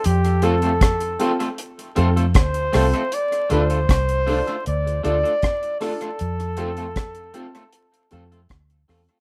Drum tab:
HH |xxxxxxxxxxxxxxox|xxxxxxoxxxxxxxox|xxxxxxxxxxxxxxox|
SD |----r-------r-r-|----r-------r-r-|----r-------r-r-|
BD |----o-------o---|----o-------o---|----o-------o---|